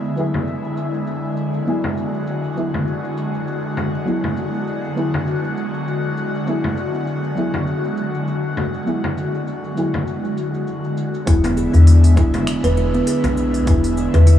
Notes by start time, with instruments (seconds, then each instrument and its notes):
Already playing: analog synth pad D3 G#3 E4, synth stab F#3 B3 E4 G#4
0.04 shaker
0.16 synth stab F#3 B3 E4, shaker
0.20 synth stab G#4
0.34 low conga, shaker
0.47 shaker
0.64 shaker
0.77 shaker
0.94 shaker
1.07 shaker
1.37 shaker
1.54 shaker
1.65 synth stab F#3 B3 E4, analog synth pad F#4, shaker
1.69 synth stab G#4
1.84 low conga
1.97 shaker
2.14 shaker
2.27 shaker
2.44 shaker
2.55 synth stab F#3 B3 E4, shaker
2.59 synth stab G#4
2.74 low conga, shaker
2.87 shaker
3.04 shaker
3.17 shaker
3.34 shaker
3.47 shaker
3.77 low conga, shaker
3.94 shaker
4.05 synth stab F#3 B3 E4 G#4, shaker
4.24 low conga
4.37 shaker
4.54 shaker
4.67 shaker
4.84 shaker
4.95 synth stab F#3 B3 E4, shaker
4.99 synth stab G#4
5.14 low conga, shaker
5.27 shaker
5.44 shaker
5.57 shaker
5.74 shaker
5.87 shaker
6.17 shaker
6.35 shaker
6.46 synth stab F#3 B3 E4, shaker
6.50 synth stab G#4
6.64 low conga
6.77 shaker
6.94 shaker
7.07 shaker
7.24 shaker
7.35 synth stab F#3 B3 E4, shaker
7.39 synth stab G#4
7.54 low conga, shaker
7.67 shaker
7.84 shaker
7.97 shaker
8.14 shaker
8.28 shaker
8.57 low conga, shaker
8.74 shaker
8.85 synth stab F#3 B3 E4, shaker
8.89 synth stab G#4
9.04 low conga
9.17 shaker
9.34 shaker
9.47 shaker
9.64 shaker
9.75 synth stab F#3 B3 E4 G#4, shaker
9.94 low conga, shaker
10.07 shaker
10.24 shaker
10.37 shaker
10.54 shaker
10.67 shaker
10.84 shaker
10.97 shaker
11.14 shaker
11.25 fm bass E1, analog synth pad D3 G#3 E4, synth stab F#3 B3 E4 G#4, kalimba E4, kick, open hi-hat, shaker
11.44 kalimba B3, open hi-hat, low conga
11.57 kalimba G#4, shaker
11.74 fm bass E2, kalimba D4, open hi-hat, shaker
11.87 open hi-hat, shaker
12.04 open hi-hat, shaker
12.15 fm bass E1, synth stab F#3 B3 E4 G#4, kick, shaker
12.34 open hi-hat, low conga, shaker
12.47 finger snap, open hi-hat, shaker
12.64 fm bass E1, kalimba B4, open hi-hat, shaker
12.77 kalimba E4, shaker
12.94 kalimba B3, shaker
13.07 kalimba G#4, open hi-hat, shaker
13.24 fm bass B1, kalimba D4, open hi-hat, low conga
13.37 shaker
13.54 open hi-hat, shaker
13.66 fm bass E1, synth stab F#3 B3 E4, kick, open hi-hat, shaker
13.70 synth stab G#4
13.84 open hi-hat
13.97 shaker
14.14 fm bass E2, kalimba B4, open hi-hat, low conga, shaker
14.27 kalimba E4, open hi-hat, shaker